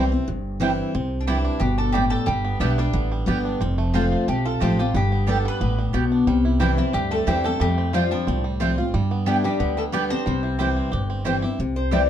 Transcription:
Already playing: C2 C3 E3 G3 C4 E4 C6
0.12 C4 E4
0.28 G1 G2
0.60 E3 G3 C4 E4 C5 G5
0.95 C2 C3 C4
1.21 D4
1.27 E3 G3 C4 D4 E4 D5 G5
1.45 D4
1.60 G1 B2 G3 G4
1.78 D4 A4
1.92 A2 G3 C4 E4 G4 D5 G5
2.10 G4 A4
2.26 G1 G2 G3 G4
2.45 B3
2.60 B1 G3 B3 D4 E4 G4 D5 G5
2.78 G3 D4 G4
2.93 A1 D3 B3
3.12 G3
3.26 G1 G3 B3 D4 G4 D5 G5
3.45 D4
3.61 F1 F2 C4
3.78 A3
3.94 F3 A3 C4 F4 C5 A5
4.12 F4
4.28 B1 C3 A3 G4
4.45 F4 A4
4.60 A1 F3 A3 C4 F4 G4 C5 A5
4.79 C4 F4 G4
4.94 G1 G2 G3 G4
5.12 B3
5.27 G3 B3 D4 G4 A4 D5 G5
5.45 G3 B4
5.61 A1 A2 B3
5.78 G3
5.93 B1 B2 B3 G4 D5 G5
6.12 D4
6.27 C2 C3 G3
6.45 E4
6.60 E3 G3 C4 E4 G4 C5 G5
6.77 E3 C4 E4
6.93 D2 G2 G3 G4
7.11 A3 C4 A4
7.27 E2 E3 G3 C4 E4 G4 C5 G5
7.44 A3 C4 E4 G4 A4
7.60 F2 G3 A3 G4
7.78 C4
7.93 F3 G3 A3 C4 F4 C5 G5
8.11 F3 G3 C4 D4 F4
8.27 C2 A2 C4
8.44 G3
8.60 F3 G3 A3 C4 F4 C5 G5
8.78 C4 F4
8.94 G2 G3
9.11 B3
9.26 G3 B3 D4 E4 G4 D5 G5
9.44 G3 D4 G4
9.60 D2 D3 B3
9.77 G3 A3 A4
9.92 G3 B3 D4 G4 B4 D5 G5
10.10 C4 D4 G4 C5
10.26 C2 C3 G3
10.43 E4
10.59 E3 G3 C4 E4 G4 C5 G5
10.77 C4
10.92 G1 G2 G4
11.10 C4
11.25 E3 G3 C4 E4 C5 G5
11.42 C4 E4 G4
11.59 C2 C3
11.76 C5
11.91 E3 G3 C4 E4 C5 D5 G5

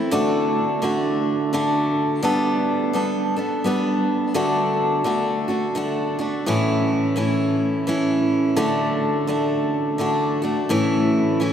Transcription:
Already playing: A3 C4 E4
0.11 D3 A3 D4 F#4
0.82 D3 A3 D4 F#4
1.53 D3 A3 D4 F#4
2.23 G3 B3 D4 A4
2.93 G3 B3 D4 A4
3.36 B3 D4 A4
3.64 G3 B3 D4 A4
4.34 D3 A3 D4 F#4
5.04 D3 A3 D4 F#4
5.48 A3 D4 F#4
5.75 D3 A3 D4 F#4
6.19 A3 D4 F#4
6.46 A2 E3 A3 C#4 E4
7.16 E3 A3 C#4 E4
7.87 E3 A3 C#4 E4
8.56 D3 A3 D4 F#4
9.27 D3 A3 D4 F#4
9.98 D3 A3 D4 F#4
10.42 A3 D4 F#4
10.69 A2 E3 A3 C#4 E4
11.40 E3 A3 C#4 E4

